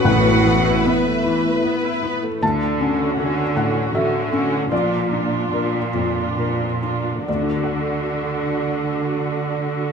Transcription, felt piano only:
\new Staff \with { instrumentName = "Felt piano" } { \time 3/4 \key d \major \tempo 4 = 75 << { fis''4 e''4. r8 | a''4. fis''8 e''4 | d''2. | <d, d d' fis' a' d'' fis''>2. | } \\ { a,8 e8 b8 e'8 b'8 e'8 | d,8 cis'8 <fis' a'>8 a,8 <fis' a'>8 cis'8 | bes,,8 d'8 <f' bes'>8 f,8 <f' bes'>8 d'8 | r2. | } >> }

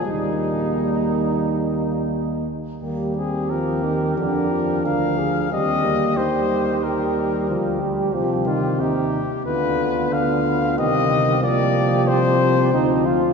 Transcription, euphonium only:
\new Staff \with { instrumentName = "Euphonium" } { \clef bass \time 4/4 \key ees \major \tempo 4 = 91 g2.~ g8 r8 | g4 f8 ees8 d8 f4. | g4 ees2 f8 g8 | f8 ees8 c8 r8 d2 |
ees4 f2 f4 | }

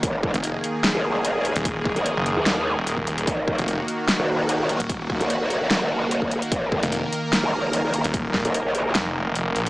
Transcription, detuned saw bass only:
\new Staff \with { instrumentName = "Detuned saw bass" } { \clef bass \time 4/4 \key ees \minor \tempo 4 = 148 r8. f,,8 r2 r8 ees,,16~ | ees,,8. r8 ges,,8 r4 ees,,4~ ees,,16 | r8. f,,8 r2 r8 ees,,16~ | ees,,8. r2. r16 |
r8. f,,8 r2 r8 ees,,16~ | ees,,8. r4 r16 f,,4 f,,8 bes,,8 | }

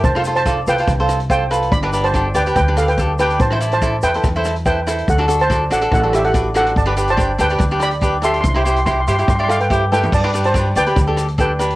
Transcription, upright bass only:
\new Staff \with { instrumentName = "Upright bass" } { \clef bass \time 4/4 \key g \mixolydian \tempo 4 = 143 f,,4. c,8 c,2 | g,,4. d,8 d,2 | a,,4. e,8 e,2 | d,4. a,,8 a,,2 |
g,,4. d,8 d,2 | c,4. g,8 g,2 | g,4. d,8 d,2 | }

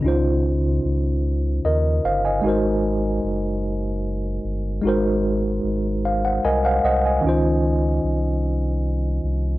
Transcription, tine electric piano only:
\new Staff \with { instrumentName = "Tine electric piano" } { \time 6/8 \key des \major \tempo 4. = 50 << { r2 <bes' ees''>8 <c'' f''>16 <ees'' aes''>16~ | <ees'' aes''>16 r2 r8. | r4. <c'' f''>16 <c'' ges''>16 <bes' ees'' aes''>16 <c'' f'' ges''>16 <c'' ees'' ges''>16 <ees'' aes''>16~ | <ees'' aes''>16 r2 r8. | } \\ { <des des' ees' f' c''>2. | <aes ees' ges' bes' c''>2. | <aes ees' ges' bes' c''>2. | <ees des' ees' f' c''>2. | } >> }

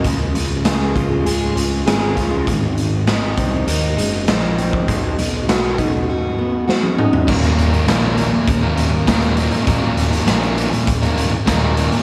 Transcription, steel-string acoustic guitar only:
\new Staff \with { instrumentName = "Steel-string acoustic guitar" } { \time 4/4 \key ees \minor \tempo 4 = 100 des4 aes'8 f'8 aes'8 des'8 aes'8 f'8 | aes,4 ees'8 c'8 ees'8 aes8 ees'8 c'8 | b,4 fis'8 dis'8 fis'8 b8 fis'8 dis'8 | r1 |
r1 | }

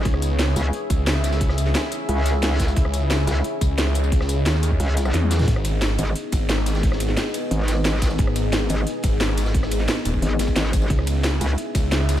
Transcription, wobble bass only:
\new Staff \with { instrumentName = "Wobble bass" } { \clef bass \time 4/4 \key cis \dorian \tempo 4 = 177 r4. cis,8 r2 | r2 cis,2 | r4. cis,8 r2 | r2 cis,4 r4 |
r4. gis,,8 r2 | r2 gis,,2 | r4. gis,,8 r2 | r2 gis,,8 r8 gis,,4 |
r4. cis,8 r2 | }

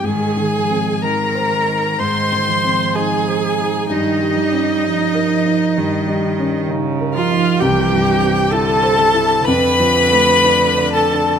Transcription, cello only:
\new Staff \with { instrumentName = "Cello" } { \clef bass \time 4/4 \key aes \major \tempo 4 = 63 ees8 f8 ees4 ees8 f4. | ees8 g8 f4 ees4 des8 f8 | \key c \major e4 d8 c8 d2 | }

